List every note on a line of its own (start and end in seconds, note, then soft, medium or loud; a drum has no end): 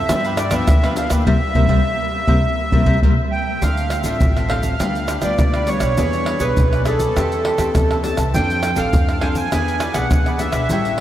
0.00 0.41 E5 medium
0.09 0.66 G2 medium
0.09 0.60 G2 medium
0.09 0.37 F3 medium
0.09 0.37 B3 medium
0.09 0.23 D4 soft
0.09 0.38 D4 medium
0.09 0.23 G4 medium
0.09 0.24 B4 medium
0.09 0.23 F5 medium
0.09 pandeiro medium
0.09 tamborim medium
0.09 shaker medium
0.09 surdo medium
0.24 0.52 G4 soft
0.24 0.51 B4 medium
0.24 0.50 F5 medium
0.24 pandeiro soft
0.24 shaker soft
0.37 0.54 D5 medium
0.37 pandeiro medium
0.37 tamborim medium
0.37 shaker medium
0.51 0.77 F3 medium
0.51 0.78 B3 medium
0.51 0.78 D4 medium
0.51 0.82 G4 medium
0.51 0.81 B4 medium
0.51 0.94 E5 medium
0.51 0.81 F5 medium
0.51 pandeiro medium
0.51 tamborim medium
0.51 shaker medium
0.51 surdo soft
0.68 0.94 D2 loud
0.68 1.24 D3 medium
0.68 pandeiro medium
0.68 tamborim medium
0.68 shaker medium
0.68 surdo loud
0.84 1.08 F3 medium
0.84 1.08 B3 medium
0.84 1.09 D4 medium
0.84 0.95 G4 medium
0.84 0.96 B4 medium
0.84 0.96 F5 medium
0.84 pandeiro soft
0.84 tamborim medium
0.84 shaker soft
0.96 1.10 D4 soft
0.96 1.10 G4 medium
0.96 1.09 B4 soft
0.96 1.10 F5 medium
0.96 1.08 F5 medium
0.96 pandeiro medium
0.96 shaker medium
1.10 1.24 D2 medium
1.10 1.26 E3 medium
1.10 1.26 A#3 medium
1.10 1.27 D4 medium
1.10 1.26 G4 medium
1.10 1.25 B4 medium
1.10 1.25 F5 medium
1.10 pandeiro medium
1.10 tamborim medium
1.10 shaker medium
1.10 surdo soft
1.27 1.38 C2 loud
1.27 1.37 G3 loud
1.27 1.37 A#3 loud
1.27 1.37 C4 loud
1.27 1.37 A#4 medium
1.27 1.36 C5 loud
1.27 1.37 E5 medium
1.27 3.00 E5 medium
1.27 surdo loud
1.55 1.67 C2 medium
1.55 1.65 G3 medium
1.55 1.65 A#3 medium
1.55 1.65 C4 medium
1.55 1.65 A#4 medium
1.55 1.65 C5 medium
1.55 1.65 E5 medium
1.55 surdo loud
1.68 1.81 C2 medium
1.68 1.79 G3 medium
1.68 1.79 A#3 medium
1.68 1.79 C4 medium
1.68 1.79 A#4 medium
1.68 1.79 C5 medium
1.68 1.80 E5 loud
1.68 surdo medium
2.27 2.40 C2 loud
2.27 2.38 G3 loud
2.27 2.38 A#3 medium
2.27 2.38 C4 medium
2.27 2.39 A#4 medium
2.27 2.39 C5 medium
2.27 2.38 E5 medium
2.27 surdo medium
2.72 2.85 C2 medium
2.72 2.83 G3 medium
2.72 2.83 A#3 medium
2.72 2.83 C4 medium
2.72 2.83 A#4 medium
2.72 2.83 C5 medium
2.72 2.83 E5 medium
2.72 surdo loud
2.86 2.99 C2 medium
2.86 2.97 G3 medium
2.86 2.97 A#3 medium
2.86 2.97 C4 medium
2.86 2.97 A#4 medium
2.86 2.97 C5 medium
2.86 2.97 E5 medium
2.86 surdo medium
3.02 3.15 C2 medium
3.02 3.13 G3 medium
3.02 3.13 A#3 medium
3.02 3.13 C4 medium
3.02 3.13 A#4 medium
3.02 3.13 C5 medium
3.02 3.13 E5 medium
3.02 surdo loud
3.31 3.63 G5 medium
3.62 4.00 D2 loud
3.62 4.19 D3 medium
3.62 3.89 D4 medium
3.62 3.90 A4 medium
3.62 3.90 C5 medium
3.62 4.08 F5 medium
3.62 3.91 F5 medium
3.62 pandeiro medium
3.62 shaker medium
3.62 surdo medium
3.77 pandeiro soft
3.77 shaker soft
3.90 4.03 D4 soft
3.90 4.04 A4 soft
3.90 4.04 C5 soft
3.90 4.05 F5 soft
3.90 pandeiro medium
3.90 tamborim medium
3.90 shaker medium
4.04 4.18 A1 medium
4.04 4.45 C4 medium
4.04 4.15 D4 medium
4.04 4.46 F4 medium
4.04 4.15 A4 medium
4.04 4.46 A4 medium
4.04 4.15 C5 medium
4.04 4.51 E5 medium
4.04 4.15 F5 medium
4.04 pandeiro medium
4.04 shaker medium
4.04 surdo soft
4.21 4.72 A1 medium
4.21 4.78 A2 medium
4.21 pandeiro medium
4.21 shaker medium
4.21 surdo medium
4.36 4.48 A4 soft
4.36 4.49 C5 soft
4.36 4.49 F5 soft
4.36 pandeiro soft
4.36 tamborim medium
4.36 shaker soft
4.49 4.75 C4 medium
4.49 4.63 D4 medium
4.49 4.76 F4 soft
4.49 4.64 A4 medium
4.49 4.76 A4 medium
4.49 4.63 C5 medium
4.49 5.20 F5 medium
4.49 4.62 F5 medium
4.49 pandeiro medium
4.49 tamborim medium
4.49 surdo soft
4.63 4.79 A4 soft
4.63 4.78 C5 soft
4.63 4.78 F5 soft
4.63 pandeiro soft
4.63 shaker medium
4.63 surdo soft
4.79 5.18 D2 medium
4.79 5.36 D3 soft
4.79 5.08 G3 soft
4.79 5.08 B3 soft
4.79 5.07 D4 medium
4.79 5.08 F4 medium
4.79 5.08 G4 medium
4.79 5.08 B4 medium
4.79 5.09 F5 medium
4.79 pandeiro medium
4.79 tamborim medium
4.79 shaker medium
4.79 surdo medium
4.95 pandeiro soft
4.95 shaker soft
5.08 5.21 D4 soft
5.08 5.21 G4 soft
5.08 5.22 B4 soft
5.08 5.22 F5 medium
5.08 pandeiro medium
5.08 tamborim medium
5.08 shaker medium
5.22 5.36 D2 medium
5.22 5.63 G3 medium
5.22 5.63 B3 soft
5.22 5.33 D4 medium
5.22 5.63 F4 soft
5.22 5.33 G4 medium
5.22 5.33 B4 medium
5.22 5.69 D5 medium
5.22 5.33 F5 medium
5.22 pandeiro medium
5.22 tamborim medium
5.22 shaker medium
5.22 surdo soft
5.39 5.77 D2 medium
5.39 5.95 D3 soft
5.39 pandeiro medium
5.39 tamborim medium
5.39 shaker medium
5.39 surdo loud
5.54 5.81 G4 soft
5.54 5.80 B4 soft
5.54 5.79 F5 soft
5.54 pandeiro soft
5.54 tamborim medium
5.54 shaker soft
5.67 5.93 G3 soft
5.67 5.93 B3 soft
5.67 5.93 F4 medium
5.67 6.44 C#5 medium
5.67 pandeiro medium
5.67 shaker medium
5.80 6.00 B1 medium
5.80 5.97 G4 soft
5.80 5.96 B4 soft
5.80 5.96 F5 soft
5.80 pandeiro medium
5.80 tamborim medium
5.80 shaker medium
5.80 surdo soft
5.97 6.36 E2 loud
5.97 6.54 E3 medium
5.97 6.38 B3 medium
5.97 6.38 D4 medium
5.97 6.25 E4 medium
5.97 6.26 G#4 medium
5.97 6.38 G#4 medium
5.97 6.26 B4 medium
5.97 6.27 D5 medium
5.97 pandeiro medium
5.97 shaker medium
5.97 surdo medium
6.13 pandeiro soft
6.13 shaker soft
6.26 6.39 E4 soft
6.26 6.39 G#4 soft
6.26 6.40 B4 soft
6.26 6.40 D5 medium
6.26 pandeiro medium
6.26 tamborim medium
6.40 6.54 B1 medium
6.40 6.81 B3 medium
6.40 6.81 D4 medium
6.40 6.50 E4 medium
6.40 6.51 G#4 medium
6.40 6.81 G#4 medium
6.40 6.83 B4 medium
6.40 6.51 B4 medium
6.40 6.51 D5 medium
6.40 pandeiro medium
6.40 shaker medium
6.40 surdo soft
6.57 7.07 B1 loud
6.57 7.13 B2 medium
6.57 pandeiro medium
6.57 shaker medium
6.57 surdo loud
6.73 6.85 G#4 soft
6.73 6.85 B4 soft
6.73 6.86 D5 soft
6.73 pandeiro soft
6.73 tamborim medium
6.73 shaker soft
6.85 7.04 B3 medium
6.85 7.04 D4 medium
6.85 7.00 E4 medium
6.85 7.00 G#4 medium
6.85 7.04 G#4 medium
6.85 8.00 A4 medium
6.85 6.99 B4 medium
6.85 6.98 D5 medium
6.85 pandeiro medium
6.85 tamborim medium
6.85 shaker medium
6.99 7.15 G#4 soft
6.99 7.15 B4 soft
6.99 7.14 D5 soft
6.99 pandeiro medium
6.99 shaker medium
6.99 surdo soft
7.16 7.54 E2 medium
7.16 7.72 E3 soft
7.16 7.56 A3 soft
7.16 7.56 C4 medium
7.16 7.44 G4 medium
7.16 7.56 G4 soft
7.16 7.44 C5 medium
7.16 7.45 E5 medium
7.16 7.46 A5 medium
7.16 pandeiro medium
7.16 tamborim medium
7.16 shaker medium
7.16 surdo medium
7.32 pandeiro soft
7.32 shaker soft
7.45 7.58 G4 soft
7.45 7.59 C5 medium
7.45 7.59 E5 soft
7.45 7.59 A5 soft
7.45 pandeiro medium
7.45 tamborim medium
7.58 7.72 E2 medium
7.58 7.99 A3 medium
7.58 7.99 C4 medium
7.58 7.99 G4 medium
7.58 7.69 G4 medium
7.58 7.69 C5 medium
7.58 7.69 E5 medium
7.58 7.69 A5 medium
7.58 pandeiro medium
7.58 tamborim medium
7.58 shaker medium
7.58 surdo soft
7.75 8.13 E2 medium
7.75 8.31 E3 medium
7.75 pandeiro medium
7.75 tamborim medium
7.75 shaker medium
7.75 surdo medium
7.91 8.19 C5 soft
7.91 8.18 E5 soft
7.91 8.17 A5 soft
7.91 pandeiro soft
7.91 tamborim medium
7.91 shaker soft
8.04 8.21 A3 medium
8.04 8.22 C4 medium
8.04 8.22 G4 medium
8.04 8.17 A5 medium
8.04 pandeiro medium
8.04 shaker medium
8.17 8.36 C2 medium
8.17 8.33 C5 soft
8.17 8.33 E5 soft
8.17 8.32 A5 soft
8.17 pandeiro medium
8.17 tamborim medium
8.17 shaker medium
8.17 surdo soft
8.34 8.72 F2 loud
8.34 8.90 F3 medium
8.34 8.74 C4 medium
8.34 8.74 D4 medium
8.34 8.62 D4 medium
8.34 8.74 A4 medium
8.34 8.63 A4 medium
8.34 8.64 C5 medium
8.34 8.64 F5 medium
8.34 8.80 G5 loud
8.34 pandeiro medium
8.34 shaker medium
8.34 surdo soft
8.50 pandeiro soft
8.50 shaker soft
8.63 8.76 D4 soft
8.63 8.77 A4 soft
8.63 8.77 C5 medium
8.63 8.77 F5 medium
8.63 pandeiro medium
8.63 tamborim medium
8.63 shaker medium
8.76 8.90 A1 medium
8.76 9.17 C4 medium
8.76 9.17 D4 medium
8.76 8.87 D4 medium
8.76 9.17 A4 medium
8.76 8.87 A4 medium
8.76 8.87 C5 medium
8.76 9.23 F5 medium
8.76 8.87 F5 medium
8.76 pandeiro medium
8.76 shaker medium
8.76 surdo soft
8.93 9.43 F2 loud
8.93 9.49 F3 medium
8.93 pandeiro medium
8.93 shaker medium
8.93 surdo medium
9.09 9.22 A4 soft
9.09 9.22 C5 soft
9.09 9.22 F5 soft
9.09 pandeiro soft
9.09 tamborim medium
9.09 shaker soft
9.21 9.47 C4 medium
9.21 9.36 D4 medium
9.21 9.47 D4 medium
9.21 9.47 A4 medium
9.21 9.36 A4 medium
9.21 9.36 C5 medium
9.21 9.35 F5 medium
9.21 9.29 G#5 medium
9.21 pandeiro medium
9.21 tamborim medium
9.21 surdo soft
9.29 9.36 F5 medium
9.35 9.51 A4 soft
9.35 9.51 C5 soft
9.35 9.50 F5 soft
9.35 9.98 G#5 medium
9.35 pandeiro medium
9.35 shaker medium
9.35 surdo soft
9.52 9.90 E2 medium
9.52 10.08 E3 soft
9.52 9.80 B3 soft
9.52 9.80 D4 medium
9.52 9.80 E4 medium
9.52 9.80 G#4 medium
9.52 9.81 B4 medium
9.52 9.81 D5 medium
9.52 pandeiro medium
9.52 tamborim medium
9.52 shaker medium
9.52 surdo medium
9.68 pandeiro soft
9.68 shaker soft
9.80 9.93 E4 soft
9.80 9.93 G#4 soft
9.80 9.94 B4 medium
9.80 9.94 D5 medium
9.80 pandeiro medium
9.80 tamborim medium
9.80 shaker medium
9.94 10.07 B1 medium
9.94 10.35 B3 medium
9.94 10.35 D4 soft
9.94 10.04 E4 medium
9.94 10.04 G#4 medium
9.94 10.35 G#4 medium
9.94 10.05 B4 medium
9.94 10.05 D5 medium
9.94 10.40 F#5 medium
9.94 pandeiro medium
9.94 tamborim medium
9.94 shaker medium
9.94 surdo soft
10.11 10.48 E2 medium
10.11 10.67 B2 soft
10.11 pandeiro medium
10.11 tamborim medium
10.11 shaker medium
10.11 surdo loud
10.26 10.54 G#4 soft
10.26 10.54 B4 soft
10.26 10.52 D5 soft
10.26 pandeiro soft
10.26 tamborim medium
10.26 shaker soft
10.39 10.65 B3 soft
10.39 10.65 D4 medium
10.39 10.65 G#4 medium
10.39 11.00 E5 medium
10.39 pandeiro medium
10.39 shaker medium
10.52 10.70 B1 medium
10.52 10.69 G#4 soft
10.52 10.68 B4 soft
10.52 10.68 D5 soft
10.52 pandeiro medium
10.52 tamborim medium
10.52 shaker medium
10.52 surdo soft
10.69 11.00 A1 medium
10.69 11.00 A2 medium
10.69 10.98 G3 medium
10.69 10.98 C#4 medium
10.69 10.97 E4 medium
10.69 10.98 E4 medium
10.69 10.98 A4 medium
10.69 10.99 C#5 medium
10.69 10.99 G5 medium
10.69 pandeiro medium
10.69 shaker medium
10.69 surdo medium
10.85 pandeiro soft
10.85 shaker soft